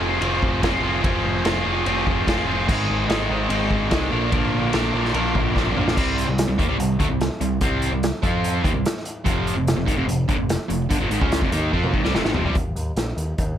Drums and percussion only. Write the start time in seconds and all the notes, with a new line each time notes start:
0.22 ride bell
0.42 kick
0.63 kick, snare, ride bell
1.04 kick, ride bell
1.45 snare, ride bell
1.86 ride bell
2.07 kick
2.28 kick, snare, ride bell
2.69 kick, crash
3.10 snare, ride bell
3.50 ride bell
3.71 kick
3.91 kick, snare, ride bell
4.32 kick, ride bell
4.73 snare, ride bell
5.05 snare
5.14 ride bell
5.35 kick
5.56 kick, snare
5.67 mid tom
5.77 mid tom
5.88 snare
5.97 kick, crash
6.18 closed hi-hat
6.38 snare, closed hi-hat
6.59 kick, closed hi-hat
6.80 closed hi-hat
7.00 kick, closed hi-hat
7.21 snare, closed hi-hat
7.41 closed hi-hat
7.61 kick, closed hi-hat
7.82 closed hi-hat
8.03 snare, closed hi-hat
8.23 kick, closed hi-hat
8.44 closed hi-hat
8.64 kick, closed hi-hat
8.86 snare, closed hi-hat
8.97 snare
9.05 closed hi-hat
9.26 kick, closed hi-hat
9.47 closed hi-hat
9.68 snare, closed hi-hat
9.88 kick, closed hi-hat
10.09 closed hi-hat
10.29 kick, closed hi-hat
10.49 snare, closed hi-hat
10.70 closed hi-hat
10.90 kick, closed hi-hat
11.11 closed hi-hat
11.22 kick
11.32 snare, closed hi-hat
11.42 kick
11.52 closed hi-hat
11.73 kick
11.83 high tom
11.94 kick
12.05 snare
12.15 snare
12.25 snare
12.34 floor tom
12.45 floor tom
12.55 kick, closed hi-hat
12.76 closed hi-hat
12.97 snare, closed hi-hat
13.18 closed hi-hat
13.38 kick, closed hi-hat